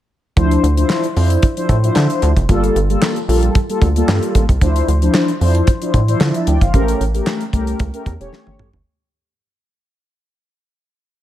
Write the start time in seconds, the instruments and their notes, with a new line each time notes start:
0.36 analog synth bass D2, analog polysynth F3 D4 E4 C5, kick, closed hi-hat
0.51 closed hi-hat
0.63 analog synth bass D2, closed hi-hat
0.77 analog polysynth F3 D4 E4 C5, closed hi-hat
0.90 snare, clap
1.04 closed hi-hat
1.16 analog synth bass F2, analog polysynth F3 D4 E4 C5, open hi-hat
1.30 closed hi-hat
1.42 kick, closed hi-hat
1.57 analog polysynth F3 D4 E4 C5, closed hi-hat
1.69 analog synth bass A2, kick, closed hi-hat
1.83 analog polysynth F3 D4 E4 C5, closed hi-hat
1.96 analog synth bass D3, snare, clap
2.10 closed hi-hat
2.22 analog synth bass D2, closed hi-hat
2.36 analog synth bass F1, kick, closed hi-hat
2.49 analog synth bass G1, analog polysynth G3 A#3 F4 A4, kick, closed hi-hat
2.64 closed hi-hat
2.75 analog synth bass G1, closed hi-hat
2.89 analog polysynth G3 A#3 F4 A4, closed hi-hat
3.02 snare, clap
3.16 closed hi-hat
3.28 analog synth bass A#1, analog polysynth G3 A#3 F4 A4, open hi-hat
3.43 closed hi-hat
3.55 kick, closed hi-hat
3.69 analog polysynth G3 A#3 F4 A4, closed hi-hat
3.82 analog synth bass D2, kick, closed hi-hat
3.96 analog polysynth G3 A#3 F4 A4, closed hi-hat
4.08 analog synth bass G2, snare, clap
4.22 closed hi-hat
4.35 analog synth bass A1, kick, closed hi-hat
4.49 analog synth bass C2, kick, closed hi-hat
4.61 analog synth bass D2, analog polysynth F3 D4 E4 C5, kick, closed hi-hat
4.76 closed hi-hat
4.88 analog synth bass D2, closed hi-hat
5.02 analog polysynth F3 D4 E4 C5, closed hi-hat
5.14 snare, clap
5.28 closed hi-hat
5.41 analog synth bass F2, analog polysynth F3 D4 E4 C5, open hi-hat
5.55 closed hi-hat
5.67 kick, closed hi-hat
5.82 analog polysynth F3 D4 E4 C5, closed hi-hat
5.94 analog synth bass A2, kick, closed hi-hat
6.08 analog polysynth E3 D4 E4 C5, closed hi-hat
6.14 analog polysynth F3
6.21 analog synth bass D3, snare, clap
6.34 analog polysynth E5 A5, closed hi-hat
6.47 analog synth bass D2, analog polysynth D5 G5, closed hi-hat
6.61 analog synth bass G1, analog polysynth C5 F5, kick, closed hi-hat
6.74 analog synth bass A1, analog polysynth A3 C#4 G4 A#4, kick, closed hi-hat
6.88 closed hi-hat
7.00 analog synth bass A1, closed hi-hat
7.14 analog polysynth A3 C#4 G4 A#4, closed hi-hat
7.27 snare, clap
7.41 closed hi-hat
7.53 analog synth bass C2, analog polysynth A3 C#4 G4 A#4, kick, closed hi-hat
7.67 closed hi-hat
7.80 analog synth bass C#2, kick, closed hi-hat
7.94 analog polysynth A3 C#4 G4 A#4, closed hi-hat
8.06 analog synth bass E2, kick, closed hi-hat
8.20 analog synth bass E1, analog polysynth A3 C#4 G4 C#5, closed hi-hat
8.33 snare
8.47 analog synth bass G1, high tom
8.59 analog synth bass A1, mid tom
8.73 analog synth bass G1, floor tom